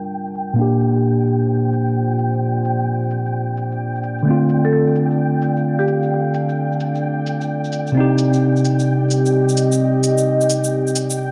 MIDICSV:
0, 0, Header, 1, 6, 480
1, 0, Start_track
1, 0, Tempo, 461538
1, 598, Time_signature, 4, 2, 24, 8
1, 11769, End_track
2, 0, Start_track
2, 0, Title_t, "Synth texture"
2, 0, Program_c, 0, 99
2, 0, Note_on_c, 0, 79, 73
2, 11769, Note_off_c, 0, 79, 0
2, 11769, End_track
3, 0, Start_track
3, 0, Title_t, "Marimba"
3, 0, Program_c, 1, 12
3, 4833, Note_on_c, 1, 69, 76
3, 4887, Note_off_c, 1, 69, 0
3, 4917, Note_on_c, 1, 69, 66
3, 5016, Note_off_c, 1, 69, 0
3, 6021, Note_on_c, 1, 67, 84
3, 6353, Note_off_c, 1, 67, 0
3, 11769, End_track
4, 0, Start_track
4, 0, Title_t, "Analog synth pad"
4, 0, Program_c, 2, 89
4, 0, Note_on_c, 2, 55, 68
4, 0, Note_on_c, 2, 62, 69
4, 0, Note_on_c, 2, 70, 83
4, 0, Note_on_c, 2, 81, 64
4, 596, Note_off_c, 2, 55, 0
4, 603, Note_on_c, 2, 58, 77
4, 695, Note_on_c, 2, 65, 67
4, 876, Note_on_c, 2, 74, 85
4, 1261, Note_off_c, 2, 70, 0
4, 1263, Note_on_c, 2, 72, 69
4, 1604, Note_off_c, 2, 62, 0
4, 1927, Note_off_c, 2, 81, 0
4, 4432, Note_on_c, 2, 62, 80
4, 4440, Note_off_c, 2, 58, 0
4, 4613, Note_on_c, 2, 69, 89
4, 5295, Note_on_c, 2, 77, 81
4, 5999, Note_off_c, 2, 65, 0
4, 5999, Note_off_c, 2, 72, 0
4, 8266, Note_on_c, 2, 60, 72
4, 8275, Note_off_c, 2, 62, 0
4, 8691, Note_on_c, 2, 67, 73
4, 8919, Note_off_c, 2, 77, 0
4, 9438, Note_on_c, 2, 75, 85
4, 9822, Note_off_c, 2, 69, 0
4, 11769, Note_off_c, 2, 60, 0
4, 11769, Note_off_c, 2, 67, 0
4, 11769, Note_off_c, 2, 74, 0
4, 11769, Note_off_c, 2, 75, 0
4, 11769, End_track
5, 0, Start_track
5, 0, Title_t, "Tine electric piano"
5, 0, Program_c, 3, 4
5, 0, Control_c, 3, 64, 127
5, 0, Note_on_c, 3, 55, 67
5, 0, Note_on_c, 3, 62, 62
5, 0, Note_on_c, 3, 65, 60
5, 0, Note_on_c, 3, 70, 75
5, 553, Note_off_c, 3, 55, 0
5, 556, Note_on_c, 3, 46, 71
5, 568, Note_off_c, 3, 62, 0
5, 581, Note_off_c, 3, 65, 0
5, 583, Note_on_c, 3, 58, 64
5, 595, Note_off_c, 3, 70, 0
5, 613, Note_on_c, 3, 62, 61
5, 614, Control_c, 3, 64, 0
5, 639, Note_on_c, 3, 67, 77
5, 820, Control_c, 3, 64, 127
5, 4394, Note_on_c, 3, 50, 68
5, 4396, Note_off_c, 3, 46, 0
5, 4410, Note_off_c, 3, 58, 0
5, 4421, Note_on_c, 3, 57, 62
5, 4424, Note_off_c, 3, 62, 0
5, 4438, Note_off_c, 3, 67, 0
5, 4449, Note_on_c, 3, 60, 64
5, 4450, Control_c, 3, 64, 0
5, 4477, Note_on_c, 3, 65, 76
5, 4608, Control_c, 3, 64, 127
5, 8235, Note_off_c, 3, 50, 0
5, 8236, Note_on_c, 3, 48, 71
5, 8249, Note_off_c, 3, 57, 0
5, 8253, Note_off_c, 3, 60, 0
5, 8265, Note_on_c, 3, 60, 66
5, 8277, Note_off_c, 3, 65, 0
5, 8291, Note_on_c, 3, 63, 69
5, 8292, Control_c, 3, 64, 0
5, 8323, Note_on_c, 3, 67, 80
5, 8481, Control_c, 3, 64, 127
5, 11769, Note_off_c, 3, 48, 0
5, 11769, Note_off_c, 3, 60, 0
5, 11769, Note_off_c, 3, 63, 0
5, 11769, Note_off_c, 3, 67, 0
5, 11769, End_track
6, 0, Start_track
6, 0, Title_t, "Drums"
6, 34, Note_on_c, 9, 82, 52
6, 138, Note_off_c, 9, 82, 0
6, 276, Note_on_c, 9, 82, 42
6, 361, Note_on_c, 9, 69, 55
6, 380, Note_off_c, 9, 82, 0
6, 465, Note_off_c, 9, 69, 0
6, 514, Note_on_c, 9, 82, 50
6, 618, Note_off_c, 9, 82, 0
6, 840, Note_on_c, 9, 69, 62
6, 944, Note_off_c, 9, 69, 0
6, 993, Note_on_c, 9, 82, 46
6, 1097, Note_off_c, 9, 82, 0
6, 1233, Note_on_c, 9, 82, 28
6, 1321, Note_on_c, 9, 69, 55
6, 1337, Note_off_c, 9, 82, 0
6, 1425, Note_off_c, 9, 69, 0
6, 1471, Note_on_c, 9, 82, 50
6, 1575, Note_off_c, 9, 82, 0
6, 1797, Note_on_c, 9, 69, 59
6, 1901, Note_off_c, 9, 69, 0
6, 1953, Note_on_c, 9, 82, 49
6, 2057, Note_off_c, 9, 82, 0
6, 2192, Note_on_c, 9, 82, 39
6, 2274, Note_on_c, 9, 69, 56
6, 2296, Note_off_c, 9, 82, 0
6, 2378, Note_off_c, 9, 69, 0
6, 2429, Note_on_c, 9, 82, 48
6, 2533, Note_off_c, 9, 82, 0
6, 2754, Note_on_c, 9, 69, 63
6, 2858, Note_off_c, 9, 69, 0
6, 2907, Note_on_c, 9, 82, 47
6, 3011, Note_off_c, 9, 82, 0
6, 3146, Note_on_c, 9, 82, 28
6, 3231, Note_on_c, 9, 69, 56
6, 3250, Note_off_c, 9, 82, 0
6, 3335, Note_off_c, 9, 69, 0
6, 3386, Note_on_c, 9, 82, 49
6, 3490, Note_off_c, 9, 82, 0
6, 3715, Note_on_c, 9, 69, 58
6, 3819, Note_off_c, 9, 69, 0
6, 3867, Note_on_c, 9, 82, 49
6, 3971, Note_off_c, 9, 82, 0
6, 4108, Note_on_c, 9, 82, 38
6, 4195, Note_on_c, 9, 69, 55
6, 4212, Note_off_c, 9, 82, 0
6, 4299, Note_off_c, 9, 69, 0
6, 4350, Note_on_c, 9, 82, 49
6, 4454, Note_off_c, 9, 82, 0
6, 4673, Note_on_c, 9, 69, 66
6, 4777, Note_off_c, 9, 69, 0
6, 4829, Note_on_c, 9, 82, 44
6, 4933, Note_off_c, 9, 82, 0
6, 5066, Note_on_c, 9, 82, 26
6, 5154, Note_on_c, 9, 69, 59
6, 5170, Note_off_c, 9, 82, 0
6, 5258, Note_off_c, 9, 69, 0
6, 5308, Note_on_c, 9, 82, 46
6, 5412, Note_off_c, 9, 82, 0
6, 5636, Note_on_c, 9, 69, 65
6, 5740, Note_off_c, 9, 69, 0
6, 5788, Note_on_c, 9, 82, 49
6, 5892, Note_off_c, 9, 82, 0
6, 6025, Note_on_c, 9, 82, 37
6, 6113, Note_on_c, 9, 69, 57
6, 6129, Note_off_c, 9, 82, 0
6, 6217, Note_off_c, 9, 69, 0
6, 6268, Note_on_c, 9, 82, 47
6, 6372, Note_off_c, 9, 82, 0
6, 6594, Note_on_c, 9, 69, 69
6, 6698, Note_off_c, 9, 69, 0
6, 6751, Note_on_c, 9, 82, 47
6, 6855, Note_off_c, 9, 82, 0
6, 6992, Note_on_c, 9, 82, 27
6, 7076, Note_on_c, 9, 69, 62
6, 7096, Note_off_c, 9, 82, 0
6, 7180, Note_off_c, 9, 69, 0
6, 7229, Note_on_c, 9, 82, 48
6, 7333, Note_off_c, 9, 82, 0
6, 7557, Note_on_c, 9, 69, 63
6, 7661, Note_off_c, 9, 69, 0
6, 7707, Note_on_c, 9, 82, 49
6, 7811, Note_off_c, 9, 82, 0
6, 7950, Note_on_c, 9, 82, 38
6, 8033, Note_on_c, 9, 69, 63
6, 8054, Note_off_c, 9, 82, 0
6, 8137, Note_off_c, 9, 69, 0
6, 8185, Note_on_c, 9, 82, 46
6, 8289, Note_off_c, 9, 82, 0
6, 8510, Note_on_c, 9, 69, 71
6, 8614, Note_off_c, 9, 69, 0
6, 8667, Note_on_c, 9, 82, 49
6, 8771, Note_off_c, 9, 82, 0
6, 8907, Note_on_c, 9, 82, 28
6, 8995, Note_on_c, 9, 69, 61
6, 9011, Note_off_c, 9, 82, 0
6, 9099, Note_off_c, 9, 69, 0
6, 9147, Note_on_c, 9, 82, 49
6, 9251, Note_off_c, 9, 82, 0
6, 9472, Note_on_c, 9, 69, 65
6, 9576, Note_off_c, 9, 69, 0
6, 9629, Note_on_c, 9, 82, 49
6, 9733, Note_off_c, 9, 82, 0
6, 9868, Note_on_c, 9, 82, 39
6, 9955, Note_on_c, 9, 69, 60
6, 9972, Note_off_c, 9, 82, 0
6, 10059, Note_off_c, 9, 69, 0
6, 10109, Note_on_c, 9, 82, 51
6, 10213, Note_off_c, 9, 82, 0
6, 10435, Note_on_c, 9, 69, 67
6, 10539, Note_off_c, 9, 69, 0
6, 10585, Note_on_c, 9, 82, 49
6, 10689, Note_off_c, 9, 82, 0
6, 10827, Note_on_c, 9, 82, 29
6, 10917, Note_on_c, 9, 69, 60
6, 10931, Note_off_c, 9, 82, 0
6, 11021, Note_off_c, 9, 69, 0
6, 11067, Note_on_c, 9, 82, 52
6, 11171, Note_off_c, 9, 82, 0
6, 11308, Note_on_c, 9, 82, 27
6, 11395, Note_on_c, 9, 69, 66
6, 11412, Note_off_c, 9, 82, 0
6, 11499, Note_off_c, 9, 69, 0
6, 11546, Note_on_c, 9, 82, 53
6, 11650, Note_off_c, 9, 82, 0
6, 11769, End_track
0, 0, End_of_file